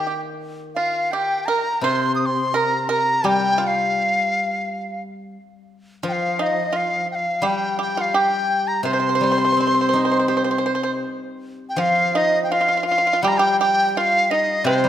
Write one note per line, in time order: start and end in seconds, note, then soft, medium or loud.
0.00 1.12 D#3 soft
0.00 0.21 G5 medium
0.07 0.13 G4 soft
0.75 1.10 F4 medium
0.75 1.13 F5 medium
1.12 1.46 G4 medium
1.12 1.47 G5 medium
1.46 1.82 A#4 medium
1.46 1.85 A#5 medium
1.81 3.94 C3 soft
1.81 2.51 C5 medium
1.81 2.13 C6 medium
2.15 2.21 D#6 medium
2.21 2.27 D#6 medium
2.26 2.58 C6 medium
2.54 2.88 A#4 medium
2.54 2.91 A#5 medium
2.89 3.22 A#4 medium
2.89 3.29 A#5 medium
3.24 5.35 G3 medium
3.24 3.58 G4 medium
3.24 3.63 G5 medium
3.58 4.95 F4 medium
3.63 3.68 G5 medium
3.67 5.02 F5 medium
6.03 8.14 F3 soft
6.03 6.37 F4 medium
6.08 6.14 G5 medium
6.13 6.44 F5 medium
6.39 6.72 D#4 medium
6.39 6.78 D#5 medium
6.73 7.39 F4 medium
6.73 7.10 F5 medium
7.11 7.48 F5 medium
7.11 7.16 G5 medium
7.42 9.19 G3 medium
7.42 7.76 G4 medium
7.46 7.81 G5 medium
7.79 7.96 G4 medium
7.79 7.97 G5 medium
7.97 8.14 F4 medium
7.97 8.02 G5 medium
8.01 8.17 F5 medium
8.14 8.81 G4 medium
8.14 8.69 G5 medium
8.68 8.84 A#5 medium
8.83 11.02 C3 soft
8.83 8.92 C5 medium
8.83 10.99 C6 medium
8.93 8.98 C5 soft
9.00 9.07 C5 medium
9.09 9.14 C5 soft
9.15 9.22 C5 medium
9.21 10.65 G3 soft
9.21 9.30 C5 soft
9.32 9.37 C5 soft
9.38 9.43 C5 soft
9.45 9.51 C5 soft
9.52 9.59 C5 soft
9.57 11.03 C4 soft
9.57 9.66 C5 soft
9.67 9.73 C5 soft
9.74 9.80 C5 soft
9.81 9.88 C5 soft
9.89 9.95 C5 soft
9.93 11.41 D#4 soft
9.93 10.04 C5 soft
10.05 10.10 C5 soft
10.12 10.18 C5 soft
10.19 10.27 C5 soft
10.28 11.78 G4 soft
10.28 10.35 C5 soft
10.37 10.43 C5 soft
10.44 10.50 C5 soft
10.51 10.57 C5 soft
10.58 10.65 C5 soft
10.66 10.74 C5 medium
10.75 10.82 C5 soft
10.83 10.90 C5 medium
11.69 11.81 G5 medium
11.76 13.94 F3 medium
11.76 12.12 F4 medium
11.76 12.18 F5 medium
12.15 12.49 D#4 medium
12.15 12.43 D#5 medium
12.44 12.53 G5 medium
12.52 12.59 F4 medium
12.52 12.87 F5 medium
12.61 12.67 F4 soft
12.69 12.75 F4 medium
12.77 12.82 F4 soft
12.83 12.90 F4 soft
12.83 13.24 F5 medium
12.92 12.97 F4 soft
12.98 13.05 F4 medium
13.07 13.12 F4 soft
13.13 13.20 F4 medium
13.22 14.83 G3 medium
13.22 13.37 G4 medium
13.22 13.29 G5 medium
13.28 13.39 A#5 medium
13.38 13.59 G4 medium
13.38 13.59 G5 medium
13.60 13.93 G4 medium
13.60 13.89 G5 medium
13.89 13.99 G5 medium
13.97 14.29 F4 medium
13.97 14.32 F5 medium
14.31 14.64 D#4 medium
14.31 14.66 D#5 medium
14.64 14.89 C3 medium
14.64 14.89 C4 medium
14.64 14.89 C5 loud
14.84 14.89 G3 soft